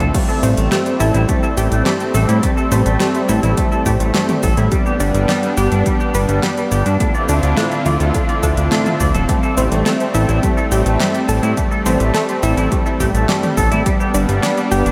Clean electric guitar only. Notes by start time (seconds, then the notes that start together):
0.00 A4
0.14 A3
0.29 A4
0.43 A3
0.57 A3
0.71 A3
0.86 A3
1.00 A4
1.14 E4
1.29 A3
1.43 A4
1.57 A3
1.71 A3
1.86 A3
2.00 A3
2.14 A4
2.29 E4
2.43 A3
2.57 A4
2.72 A3
2.86 A3
3.00 A3
3.14 A3
3.29 A4
3.43 E4
3.57 A3
3.72 A4
3.86 A3
4.00 A3
4.15 A3
4.29 A3
4.43 A4
4.58 E4
4.72 G3
4.86 G4
5.00 G3
5.15 G3
5.29 G3
5.43 G3
5.57 G4
5.72 D4
5.86 G3
6.00 G4
6.14 G3
6.29 G3
6.43 G3
6.57 G3
6.72 G4
6.86 D4
7.00 D4
7.15 D5
7.29 D4
7.43 D4
7.58 D4
7.72 D4
7.86 D5
8.00 A4
8.15 D4
8.29 D5
8.43 D4
8.58 D4
8.72 D4
8.86 D4
9.00 D5
9.15 A4
9.29 A3
9.43 A4
9.57 A3
9.72 A3
9.86 A3
10.00 A3
10.15 A4
10.29 E4
10.43 A3
10.57 A4
10.71 A3
10.86 A3
11.00 A3
11.14 A3
11.29 A4
11.43 E4
11.57 A3
11.71 A4
11.86 A3
12.00 A3
12.15 A3
12.29 A3
12.43 A4
12.57 E4
12.71 A3
12.86 A4
13.00 A3
13.14 A3
13.29 A3
13.43 A3
13.57 A4
13.71 E4
13.86 G3
14.00 G4
14.14 G3
14.29 G3
14.43 G3
14.57 G3
14.71 G4
14.86 D4